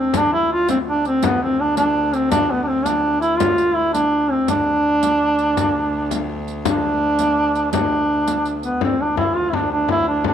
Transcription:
Already playing: D2 C4
0.13 D2, riq, frame drum
0.17 D4
0.33 E4
0.53 F4
0.68 C4, riq, frame drum
0.87 D4, frame drum
1.05 C4, riq
1.22 B3, riq, frame drum
1.43 C4
1.60 D4
1.77 D4, riq, frame drum
1.96 frame drum
2.13 C4, riq
2.31 D4, riq, frame drum
2.51 B3
2.64 C4 D4
2.86 D4, riq, frame drum
3.04 frame drum
3.21 E4, riq
3.38 F4, riq, frame drum
3.58 riq
3.75 E4
3.93 D4, riq, frame drum
4.31 C4, frame drum
4.47 D2 D4, riq, frame drum
5.03 riq, frame drum
5.21 frame drum
5.39 riq
5.57 riq, frame drum
6.11 riq, frame drum
6.29 frame drum
6.48 riq
6.65 D4, riq, frame drum
7.19 riq, frame drum
7.38 frame drum
7.55 riq
7.72 D4, riq, frame drum
8.28 riq, frame drum
8.45 riq
8.63 B3, riq
8.80 D2 C4, frame drum
9.01 D4
9.17 E4, frame drum
9.35 F4, frame drum
9.50 E4, frame drum
9.55 D4
9.72 D4
9.89 E4, frame drum
10.09 D4
10.24 D4, frame drum

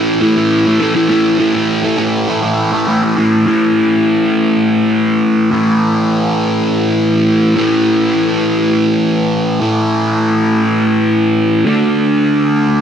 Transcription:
Already playing: A2 E3 A3
0.21 A2 E3 A3
0.37 E3 A3
0.67 E3 A3
0.80 A2 E3 A3
0.95 E3 A3
1.09 A2 E3 A3
1.39 A2 E3 A3
1.54 E3 A3
1.83 E3 A3
1.97 A2 E3 A3
2.28 A2 E3 A3
2.42 E3 A3
2.72 E3 A3
2.87 A2 E3 A3
3.03 E3 A3
3.17 A2 E3 A3
3.47 A2 E3 A3
5.52 A2 E3 A3
7.56 A2 E3 A3
9.61 A2 E3 A3
11.65 D3 A3 D4

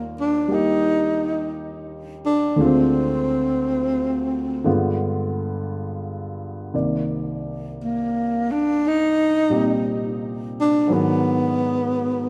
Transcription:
Already playing: D#2 D#3 G3 A#3 F4 D5
0.20 D4
0.48 G3 A#3 G4
0.53 D#4
2.26 D4
2.56 D2 D3 G#3 C4
2.61 C4 F4
4.64 G2 D3 G#3 B3 F4
6.74 C2 C3 D#3 A#3 D5
7.83 A#3
8.51 D4
8.87 D#4
9.50 A#2 G3 C4 G4
10.60 D4
10.87 G#2 D#3 F#3 A#4
10.92 B3

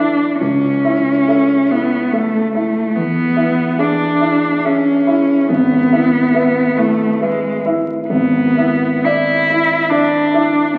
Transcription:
Already playing: A1 D4 A4
0.00 E4 E5
0.40 C#2 C#4
0.85 E4 E5
1.28 A4 E5
1.71 B3 E4 E5
2.12 A3 A4 E5
2.54 A3 E4 E5
2.95 E2 B3
3.36 E4 E5
3.78 D4 G#4 E5
4.20 E4 E5
4.65 C#4 G#4 E5
5.07 E4 E5
5.50 G#1 B3
5.92 E4 E5
6.34 B4 E5
6.76 A3 E4 E5
7.21 G#3 B4 E5
7.65 E4 E5
8.09 G#1 B3
8.57 E4 E5
9.05 E4 D5 E5
9.50 E4 E5
9.90 D4 D5 E5
10.34 E4 E5

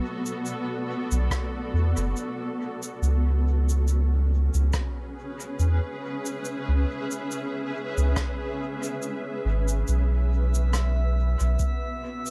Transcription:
Already playing: B3 F#4 A4 D5
0.26 shaker
0.46 shaker
1.11 B1, shaker
1.31 kick, cross-stick, shaker
1.74 E2
1.97 F#1, shaker
2.16 shaker
2.83 shaker
3.02 C#2 C#4, shaker
3.61 G#4 B4
3.69 shaker
3.88 shaker
4.54 C#2, shaker
4.73 kick, cross-stick, shaker
5.04 E5
5.40 shaker
5.59 E2, shaker
6.26 shaker
6.45 shaker
6.68 C#2
7.11 shaker
7.31 shaker
7.97 C#2, shaker
8.16 kick, cross-stick, shaker
8.83 shaker
9.02 shaker
9.45 G#1
9.68 shaker
9.88 B1 B3 E5, shaker
10.54 shaker
10.63 F#4
10.73 cross-stick, shaker
11.40 B1 D5, shaker
11.47 A4
11.59 kick, shaker
12.26 shaker

